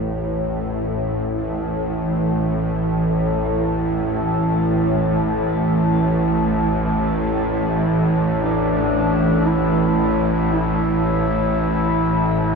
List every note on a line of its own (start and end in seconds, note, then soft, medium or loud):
0.00 12.55 A1 medium
0.00 12.55 A2 medium
0.00 12.55 E3 medium
0.00 12.55 E4 medium
0.00 12.55 A4 medium
0.00 12.55 A5 medium
8.40 9.49 D4 medium
9.47 10.52 E4 medium
10.53 12.55 E4 medium